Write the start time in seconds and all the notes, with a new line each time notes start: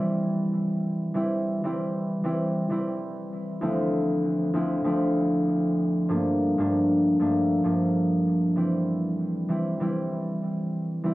Already playing: E3 G3 A3 A#3 C4 D4 E4
1.14 E3 G3 C4 E4
1.64 E3 G3 C4 E4
2.24 E3 G3 C4 E4
2.70 E3 G3 C4 E4
3.61 D2 F3 A3 C4 E4
4.54 D2 F3 A3 C4 E4
4.84 D2 F3 A3 C4 E4
6.09 G2 F3 A3 A#3 D4
6.58 G2 F3 A3 A#3 D4
7.20 G2 F3 A3 A#3 D4
7.64 G2 F3 A3 A#3 D4
8.56 E3 G3 C4 E4
9.49 E3 G3 C4 E4
9.80 E3 G3 C4 E4
11.04 E3 G3 C4 E4